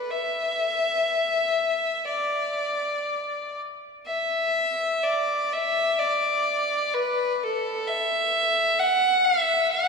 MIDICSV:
0, 0, Header, 1, 2, 480
1, 0, Start_track
1, 0, Tempo, 963082
1, 42, Time_signature, 4, 2, 24, 8
1, 1003, Tempo, 1020408
1, 1963, Tempo, 966184
1, 2923, Tempo, 937500
1, 3883, Tempo, 913242
1, 4945, End_track
2, 0, Start_track
2, 0, Title_t, "Fiddle"
2, 0, Program_c, 0, 110
2, 0, Note_on_c, 0, 71, 60
2, 51, Note_on_c, 0, 76, 71
2, 59, Note_off_c, 0, 71, 0
2, 1021, Note_on_c, 0, 74, 57
2, 1028, Note_off_c, 0, 76, 0
2, 1740, Note_off_c, 0, 74, 0
2, 1970, Note_on_c, 0, 76, 73
2, 2450, Note_on_c, 0, 74, 68
2, 2457, Note_off_c, 0, 76, 0
2, 2697, Note_on_c, 0, 76, 75
2, 2704, Note_off_c, 0, 74, 0
2, 2925, Note_on_c, 0, 74, 76
2, 2933, Note_off_c, 0, 76, 0
2, 3412, Note_on_c, 0, 71, 81
2, 3420, Note_off_c, 0, 74, 0
2, 3664, Note_on_c, 0, 69, 77
2, 3672, Note_off_c, 0, 71, 0
2, 3893, Note_on_c, 0, 76, 91
2, 3901, Note_off_c, 0, 69, 0
2, 4372, Note_on_c, 0, 78, 93
2, 4380, Note_off_c, 0, 76, 0
2, 4614, Note_on_c, 0, 76, 92
2, 4622, Note_off_c, 0, 78, 0
2, 4849, Note_off_c, 0, 76, 0
2, 4856, Note_on_c, 0, 78, 99
2, 4945, Note_off_c, 0, 78, 0
2, 4945, End_track
0, 0, End_of_file